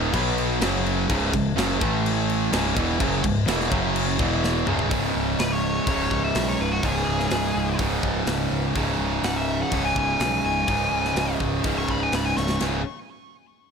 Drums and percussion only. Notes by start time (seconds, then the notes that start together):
0.14 kick, crash
0.38 crash
0.61 snare, crash
0.86 crash
1.10 kick, crash
1.34 kick, crash
1.58 snare, crash
1.81 kick, crash
2.06 crash
2.30 crash
2.53 snare, crash
2.77 kick, crash
3.00 kick, crash
3.24 kick, crash
3.48 snare, crash
3.61 snare
3.72 kick, crash
3.96 crash
4.19 kick, crash
4.44 snare
4.67 mid tom
4.79 floor tom
4.91 kick, open hi-hat
5.39 snare, open hi-hat
5.87 kick, open hi-hat
6.11 kick
6.35 snare, open hi-hat
6.83 kick, open hi-hat
7.20 snare
7.31 snare, open hi-hat
7.79 kick, open hi-hat
8.03 kick
8.27 snare, open hi-hat
8.76 kick, open hi-hat
9.24 snare, open hi-hat
9.72 kick, open hi-hat
9.96 kick
10.20 snare, open hi-hat
10.68 kick, open hi-hat
11.05 snare
11.16 snare, open hi-hat
11.40 kick
11.64 kick, open hi-hat
11.88 kick
12.12 snare, open hi-hat
12.37 snare
12.49 snare
12.61 snare, ride bell